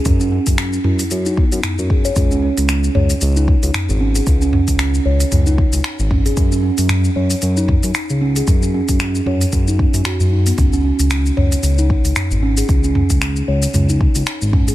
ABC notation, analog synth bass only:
X:1
M:4/4
L:1/16
Q:"Swing 16ths" 1/4=114
K:F#dor
V:1 name="Analog synth bass" clef=bass
F,,2 z F,,2 z F,, z F,,2 z F,, z F,,2 z | C,,2 z C,,2 z C,, z C,,2 z C,, z G,,,2 z | C,,2 z C,,2 z C,, z C,,2 z C,, z G,,,2 z | F,,2 z F,,2 z F,, z F,,2 z F,, z C,,2 z |
F,,2 z F,,2 z F,, z F,,2 z F,, z F,,2 z | C,,2 z C,,2 z C,, z C,,2 z C,, z G,,,2 z | C,,2 z C,,2 z C,, z C,,2 z C,, z G,,,2 z |]